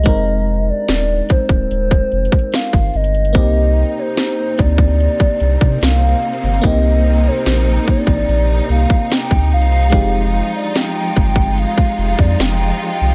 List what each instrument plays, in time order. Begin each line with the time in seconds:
Already playing: soft synth lead D#5
0.03 sub bass F1, fm electric piano G#3 C4 D#4, kick, closed hi-hat
0.08 fm electric piano A#4
0.70 soft synth lead D5
0.88 sub bass D#1, snare, closed hi-hat
1.29 soft synth lead C5, kick, closed hi-hat
1.49 sub bass D1, kick
1.71 sub bass D#1, closed hi-hat
1.91 kick
2.12 sub bass F1, closed hi-hat
2.25 closed hi-hat
2.32 kick
2.39 closed hi-hat
2.52 soft synth lead F5, snare, closed hi-hat
2.73 sub bass G1, kick
2.94 sub bass G1, soft synth lead D#5, closed hi-hat
3.04 closed hi-hat
3.14 closed hi-hat
3.25 closed hi-hat
3.33 sub bass C2, string section C3 A#3 C4 D#4, fm electric piano A#3 C4 D#4, kick, closed hi-hat
3.38 fm electric piano G4
3.99 soft synth lead C5
4.17 snare, closed hi-hat
4.58 sub bass D2, soft synth lead D5, kick, closed hi-hat
4.78 kick
5.00 closed hi-hat
5.20 kick
5.40 sub bass C2, closed hi-hat
5.61 sub bass C3, kick
5.81 sub bass C2, soft synth lead F5, snare, closed hi-hat
6.23 closed hi-hat
6.33 closed hi-hat
6.43 sub bass G1, closed hi-hat
6.54 closed hi-hat
6.61 sub bass C2, fm electric piano A#3 C4 D#4, kick, closed hi-hat
6.66 fm electric piano G4, soft synth lead D#5
7.27 soft synth lead C5
7.46 sub bass A#1, snare, closed hi-hat
7.87 soft synth lead D5, kick, closed hi-hat
8.07 sub bass A1, kick
8.28 sub bass A#1, closed hi-hat
8.69 sub bass C2, soft synth lead F5, closed hi-hat
8.90 kick
9.10 soft synth lead G5, snare, closed hi-hat
9.31 sub bass D2, kick
9.51 sub bass C2, soft synth lead F5, closed hi-hat
9.62 closed hi-hat
9.72 closed hi-hat
9.82 closed hi-hat
9.90 sub bass F1, string section F3 G#3 F4, fm electric piano G#3 C4 D#4, kick, closed hi-hat
9.95 fm electric piano G4
10.56 soft synth lead D5
10.76 soft synth lead G5, snare, closed hi-hat
11.16 sub bass G1, kick, closed hi-hat
11.36 kick
11.58 soft synth lead F5, closed hi-hat
11.78 kick
11.98 sub bass F1, closed hi-hat
12.19 sub bass F2, soft synth lead D5, kick
12.39 sub bass F1, soft synth lead G5, snare, closed hi-hat
12.80 soft synth lead G5, closed hi-hat
12.90 closed hi-hat
13.01 sub bass C2, closed hi-hat
13.11 closed hi-hat